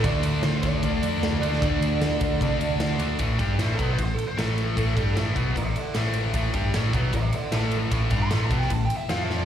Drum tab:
RD |x-x-x-x-x-x-x-x-|x-x-x-x-x-x-x-x-|x-x-x-x-x-x-x-x-|x-x-x-x-x-x-x-x-|
SD |----o-o-----o--o|----o-------o---|----o-------o---|----o-------o---|
BD |o-----o-o-------|o-----o-o-------|o-o---o-o-------|o-o---o-o-------|

RD |x-x-x-x-x-x-x-x-|x-x-x-x-x-x-x---|
SD |----o-------o---|----o--o----o-o-|
BD |o-o---o-o-------|o-o---o-o-------|